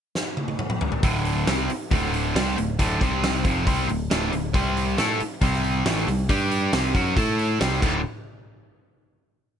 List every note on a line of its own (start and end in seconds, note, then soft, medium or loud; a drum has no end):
0.15 snare medium
0.37 high tom medium
0.48 high tom medium
0.59 mid tom medium
0.70 mid tom medium
0.81 floor tom loud
0.92 floor tom medium
1.03 1.44 D1 medium
1.03 1.47 D2 medium
1.03 1.47 A2 loud
1.03 1.48 D3 medium
1.03 kick loud
1.03 open hi-hat medium
1.25 open hi-hat medium
1.47 1.68 C2 medium
1.47 1.69 C3 medium
1.47 1.69 G3 loud
1.47 1.69 C4 medium
1.47 snare loud
1.47 open hi-hat medium
1.69 muted overdriven electric guitar stroke medium
1.69 muted picked electric bass stroke soft
1.69 open hi-hat medium
1.91 2.32 D1 medium
1.91 2.34 D2 medium
1.91 2.35 A2 medium
1.91 2.35 D3 loud
1.91 kick loud
1.91 open hi-hat medium
2.13 open hi-hat medium
2.35 2.56 C2 loud
2.35 2.57 C3 medium
2.35 2.57 G3 loud
2.35 2.57 C4 loud
2.35 snare loud
2.35 open hi-hat medium
2.57 2.78 D1 medium
2.57 2.75 D2 medium
2.57 2.75 A2 medium
2.57 open hi-hat medium
2.79 3.00 D1 medium
2.79 3.00 D2 medium
2.79 3.01 A2 loud
2.79 3.01 D3 loud
2.79 kick loud
2.79 open hi-hat medium
3.01 3.42 C2 medium
3.01 3.44 C3 medium
3.01 3.45 G3 medium
3.01 3.45 C4 medium
3.01 kick loud
3.01 open hi-hat medium
3.23 snare loud
3.23 open hi-hat medium
3.45 3.65 F1 medium
3.45 3.66 F2 medium
3.45 3.65 C3 loud
3.45 3.67 F3 medium
3.45 kick loud
3.45 open hi-hat medium
3.66 3.87 C2 medium
3.66 3.88 C3 medium
3.66 3.88 G3 medium
3.66 3.88 C4 medium
3.66 kick loud
3.66 open hi-hat medium
3.89 4.09 D1 medium
3.89 4.06 D2 medium
3.89 4.06 A2 medium
3.89 open hi-hat medium
4.10 4.31 D1 medium
4.10 4.31 D2 medium
4.10 4.31 A2 loud
4.10 4.32 D3 loud
4.10 snare loud
4.10 open hi-hat medium
4.32 4.53 D1 medium
4.32 4.50 D2 medium
4.32 4.50 A2 medium
4.32 open hi-hat medium
4.54 4.95 C2 medium
4.54 4.97 C3 medium
4.54 4.97 G3 medium
4.54 4.97 C4 loud
4.54 kick loud
4.54 open hi-hat medium
4.77 open hi-hat medium
4.97 5.19 A2 medium
4.97 5.19 A3 medium
4.97 5.19 E4 medium
4.97 5.20 A4 loud
4.97 snare loud
4.97 open hi-hat medium
5.20 muted overdriven electric guitar stroke medium
5.20 muted picked electric bass stroke soft
5.20 open hi-hat medium
5.41 5.82 C2 medium
5.41 5.85 C3 medium
5.41 5.85 G3 medium
5.41 5.85 C4 loud
5.41 kick loud
5.41 open hi-hat medium
5.53 snare soft
5.64 open hi-hat medium
5.85 6.06 A1 medium
5.85 6.06 A2 medium
5.85 6.07 E3 loud
5.85 6.07 A3 medium
5.85 snare loud
5.85 open hi-hat medium
6.07 6.27 C2 medium
6.07 6.25 C3 medium
6.07 6.25 G3 medium
6.07 open hi-hat medium
6.29 6.70 G2 medium
6.29 6.72 G3 medium
6.29 6.73 D4 medium
6.29 6.73 G4 loud
6.29 kick loud
6.29 open hi-hat medium
6.51 open hi-hat medium
6.73 6.93 C2 medium
6.73 6.94 C3 medium
6.73 6.94 G3 medium
6.73 6.95 C4 loud
6.73 snare loud
6.73 open hi-hat medium
6.95 7.15 F#2 medium
6.95 7.16 F#3 medium
6.95 7.16 C#4 loud
6.95 7.17 F#4 medium
6.95 kick medium
6.95 open hi-hat medium
7.16 7.57 A2 medium
7.16 7.59 A3 medium
7.16 7.60 E4 medium
7.16 7.60 A4 loud
7.16 kick loud
7.16 open hi-hat medium
7.39 open hi-hat medium
7.60 7.81 C2 medium
7.60 7.81 C3 medium
7.60 7.82 G3 loud
7.60 7.82 C4 medium
7.60 snare loud
7.60 open hi-hat medium
7.82 8.03 D1 medium
7.82 7.99 D2 loud
7.82 8.00 A2 medium
7.82 8.00 D3 loud
7.82 kick loud
7.82 crash medium